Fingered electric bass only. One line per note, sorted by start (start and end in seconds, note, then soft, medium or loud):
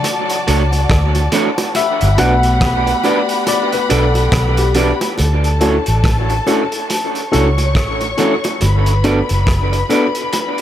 0.48 0.85 C#2 medium
0.90 1.27 D2 medium
2.02 2.17 G1 medium
3.91 4.27 B1 medium
4.33 4.91 B1 loud
5.20 5.78 D2 loud
5.88 6.39 A1 medium
7.34 7.76 C#2 medium
7.76 8.12 A1 medium
8.62 9.21 G1 loud
9.31 9.82 F#1 medium